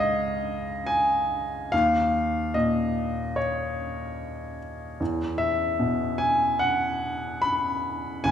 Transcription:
Already playing: C#2 G#2 C#5 F5
0.00 D#5
0.86 G#5
1.72 D#2 F5
2.54 A#2 D#5
3.36 C#5
5.00 E2
5.38 E5
5.79 B2
6.18 G#5
6.59 F#5
7.42 B5
8.24 F#1 G#5

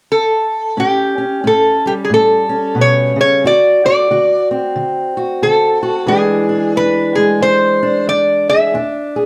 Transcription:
0.12 A4
0.77 A2 C#4 G4
1.18 C#4
1.44 A2 C#4 A4
1.86 G3 G4
2.05 G#4
2.10 A2 A4
2.49 C#4
2.75 B2
2.81 C#5
3.16 C#3
3.21 C#5
3.44 D3 F#4 D5
3.85 F#4 D5
4.11 D3 F#4
4.51 C4
4.76 D3
5.17 F#4
5.42 D3 A4
5.83 F#4
6.06 E2 E3 G#3 D4 G#4
6.49 D4
6.76 E2 D4 B4
7.15 G#3 G#4
7.41 E2 C5
7.83 D4
8.07 E2 D5
8.50 G#4 E5
8.74 E2 D4
9.16 G#4

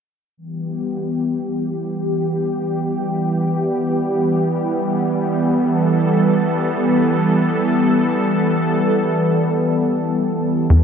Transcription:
0.37 E3 G3 B3 G4
5.53 A4
10.69 E2 E3 G3 B3 G4

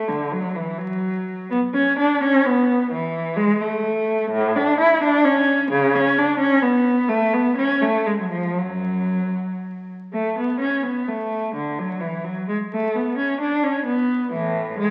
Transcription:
0.08 D3
0.32 F#3
0.56 E3
0.78 F#3
1.50 B3
1.74 C#4
1.99 D4
2.24 C#4
2.46 B3
2.91 E3
3.36 G#3
3.61 A3
4.31 A2
4.56 D4
4.80 E4
5.04 D4
5.25 C#4
5.71 C#3
5.95 C#4
6.18 D4
6.40 C#4
6.62 B3
7.08 A3
7.33 B3
7.57 C#4
7.82 A3
8.06 G#3
8.19 F#3
8.30 F3
8.58 F#2 F#3
10.13 A3
10.39 B3
10.61 C#4
10.86 B3
11.08 A3
11.54 D3
11.78 F#3
12.00 E3
12.24 F#3
12.49 G#3
12.73 A3
12.95 B3
13.18 C#4
13.41 D4
13.63 C#4
13.86 B3
14.32 A2 E3
14.78 G#3

